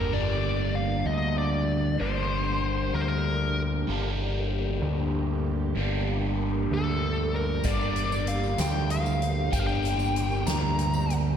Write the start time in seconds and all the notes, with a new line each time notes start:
Already playing: G2 D3 G3 A#3 A#4
0.11 G1 G2 D3 G3 A#3 D4 G4 D5
0.75 F5
1.06 D2 D#5
1.38 D5
1.99 G1 G2 D3 G3 A#3 D4 C5
2.94 D2 A#4
3.01 C5
3.08 A#4
3.87 G1 G2 D3 G3 A#3
3.92 D4
4.82 D2
5.75 G1 G2 D3 G3 A#3
5.80 D4
6.71 D2 A4
7.36 A#4
7.64 G1 G2 D3 G3 A#3 D5, kick, closed hi-hat, tambourine
7.68 D4
7.81 tambourine
7.96 closed hi-hat, tambourine
8.12 tambourine
8.27 F5, closed hi-hat
8.43 tambourine
8.58 D2 G5, snare, closed hi-hat, tambourine
8.90 F5, closed hi-hat
9.06 tambourine
9.22 closed hi-hat
9.51 G1 G2 D3 G3 A#3 G5, kick, closed hi-hat, tambourine
9.55 D4
9.60 F5
9.67 G5, tambourine
9.83 closed hi-hat, tambourine
9.99 tambourine
10.16 closed hi-hat
10.32 tambourine
10.47 D2 A#5, snare, closed hi-hat, tambourine
10.79 closed hi-hat
10.94 tambourine
11.10 closed hi-hat